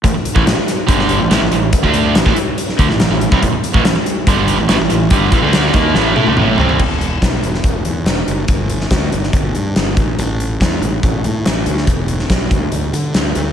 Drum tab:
CC |----------------|----------------|----------------|----------------|
HH |x-x-x-x-x-x-x-x-|x-x-x-x-x-x-x-x-|x-x-x-x-x-x-x-x-|x-x-x-x---------|
SD |----o-o--o--o---|----o----o-oo---|----o-------o---|----o-o-o-------|
T1 |----------------|----------------|----------------|----------oo----|
T2 |----------------|----------------|----------------|------------o---|
FT |----------------|----------------|----------------|--------------oo|
BD |o--o----o-------|oo---o----o----o|o--o----o-------|o-o---o---------|

CC |x---------------|----------------|----------------|----------------|
HH |--x-x-x-x-x-x-x-|x-x-x-x-x-x-x-x-|x-x-x-x-x-x-x-x-|x-x-x-x-x-x-x-x-|
SD |----o--o----o---|---oo--o----o---|----o-------o--o|---oo-------o---|
T1 |----------------|----------------|----------------|----------------|
T2 |----------------|----------------|----------------|----------------|
FT |----------------|----------------|----------------|----------------|
BD |o---o---o-------|o---o---o-----o-|----o---o-------|o---o-o---------|